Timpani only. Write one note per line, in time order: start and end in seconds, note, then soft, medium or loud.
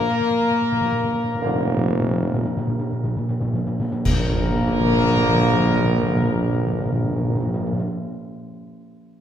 0.00 0.10 A#2 medium
0.11 0.19 A#2 medium
0.20 0.29 A#2 medium
0.30 0.40 A#2 medium
0.51 0.60 A#2 medium
0.62 0.71 A#2 medium
0.72 0.80 A#2 medium
0.81 0.91 A#2 medium
0.92 1.03 A#2 medium
1.04 1.12 A#2 medium
1.14 1.23 A#2 medium
1.24 1.33 A#2 medium
1.34 1.44 A#2 medium
1.46 1.54 A#2 loud
1.55 1.65 A#2 loud
1.66 1.76 A#2 loud
1.77 1.87 A#2 medium
1.88 1.98 A#2 medium
1.99 2.10 A#2 loud
2.11 2.21 A#2 loud
2.23 2.33 A#2 loud
2.34 2.44 A#2 loud
2.45 2.56 A#2 loud
2.57 2.66 A#2 loud
2.67 2.78 A#2 loud
2.79 2.90 A#2 loud
2.92 3.02 A#2 loud
3.04 3.16 A#2 loud
3.17 3.28 A#2 loud
3.29 3.39 A#2 loud
3.41 3.52 A#2 loud
3.54 3.65 A#2 loud
3.67 3.79 A#2 loud
3.80 3.91 A#2 loud
3.92 4.04 A#2 loud
4.06 4.12 A#2 loud
4.12 4.18 A#2 loud
4.18 4.24 A#2 loud
4.24 4.31 A#2 medium
4.31 4.37 A#2 loud
4.37 4.43 A#2 medium
4.44 4.50 A#2 loud
4.50 4.56 A#2 loud
4.56 4.62 A#2 loud
4.62 4.68 A#2 loud
4.68 4.74 A#2 loud
4.74 4.80 A#2 medium
4.80 4.86 A#2 loud
4.86 4.92 A#2 loud
4.92 4.98 A#2 loud
4.98 5.04 A#2 medium
5.04 5.10 A#2 loud
5.10 5.16 A#2 medium
5.16 5.23 A#2 loud
5.23 5.29 A#2 loud
5.29 5.34 A#2 loud
5.34 5.40 A#2 loud
5.40 5.47 A#2 loud
5.47 5.53 A#2 medium
5.53 5.60 A#2 loud
5.60 5.66 A#2 loud
5.66 5.72 A#2 loud
5.72 5.78 A#2 medium
5.79 5.85 A#2 loud
5.85 5.91 A#2 loud
5.91 5.97 A#2 loud
5.97 6.03 A#2 loud
6.03 6.10 A#2 loud
6.10 6.16 A#2 medium
6.16 6.22 A#2 loud
6.23 6.29 A#2 loud
6.29 6.35 A#2 loud
6.35 6.41 A#2 medium
6.42 6.48 A#2 loud
6.48 6.54 A#2 medium
6.54 6.60 A#2 loud
6.60 6.67 A#2 medium
6.67 6.73 A#2 loud
6.73 6.79 A#2 medium
6.79 6.86 A#2 loud
6.86 6.92 A#2 loud
6.92 6.98 A#2 loud
6.98 7.04 A#2 loud
7.04 7.11 A#2 loud
7.11 7.17 A#2 loud
7.17 7.23 A#2 loud
7.23 7.29 A#2 medium
7.29 7.35 A#2 loud
7.35 7.41 A#2 loud
7.41 7.47 A#2 loud
7.47 7.53 A#2 medium
7.54 7.60 A#2 loud
7.60 7.66 A#2 loud
7.67 7.73 A#2 loud
7.73 7.79 A#2 loud
7.79 7.85 A#2 loud